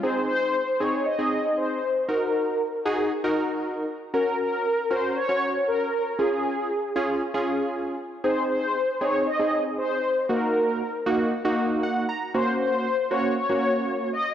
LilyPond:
<<
  \new Staff \with { instrumentName = "Analog polysynth" } { \time 4/4 \key aes \mixolydian \tempo 4 = 117 c''8 c''4 des''8 ees''4 c''4 | bes'2 r2 | bes'8 bes'4 c''8 des''4 bes'4 | aes'2 r2 |
c''8 c''4 des''8 ees''4 c''4 | bes'2 r2 | c''8 c''4 des''8 des''4. ees''8 | }
  \new Staff \with { instrumentName = "Synth keys" } { \time 4/4 \key aes \mixolydian << { r1 | r1 | r1 | r1 |
r1 | r2. ges''8 bes''8 | r1 | } \\ { <c' ees' aes'>4 r8 <c' ees' aes'>8 r16 <c' ees' aes'>4~ <c' ees' aes'>16 r8 | <ees' ges' bes'>4 r8 <ees' ges' aes'>8 r16 <ees' ges' bes'>4~ <ees' ges' bes'>16 r8 | <des' ges' bes'>4 r8 <des' ges' bes'>8 r16 <des' ges' des''>4~ <des' ges' des''>16 r8 | <des' f' aes'>4 r8 <des' f' aes'>8 r16 <des' f' aes'>4~ <des' f' aes'>16 r8 |
<c' ees' aes'>4 r8 <c' ees' aes'>8 r16 <c' ees' aes'>4~ <c' ees' aes'>16 r8 | <bes ees' ges'>4 r8 <bes ees' ges'>8 r16 <bes ees' ges'>4~ <bes ees' ges'>16 r8 | <bes des' ges'>4 r8 <bes des' ges'>8 r16 <bes des' ges'>4~ <bes des' ges'>16 r8 | } >> }
>>